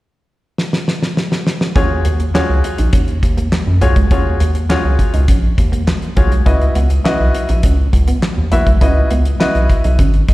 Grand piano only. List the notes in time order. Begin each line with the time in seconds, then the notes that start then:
1.75 F4 F#4 G#4 C#5
2.34 F4 F#4 G#4 C#5
3.81 F4 F#4 G#4 C#5
4.11 F4 F#4 G#4 C#5
4.69 F4 F#4 G#4 C#5
6.16 F4 F#4 G#4 C#5
6.46 E4 F#4 B4 D#5
7.04 E4 F#4 B4 D#5
8.52 E4 F#4 B4 E5
8.81 E4 F#4 B4 D#5
9.40 E4 F#4 B4 D#5
10.28 D#5